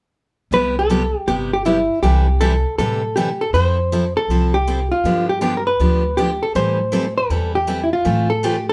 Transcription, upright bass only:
0.51 C2
1.27 G1
2.02 C2
2.78 A2
3.53 F2
4.28 C2
5.04 G2
5.80 D2
6.55 A2
7.30 E2
8.05 A2

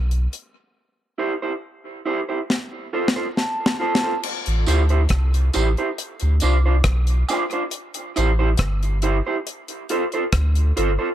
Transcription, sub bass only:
Already playing: B1
4.47 A1
4.68 D2
5.11 C2
5.56 A1
6.22 D2
6.43 C2
6.85 B1
8.18 A1
8.59 G1
10.33 D2
10.78 G1

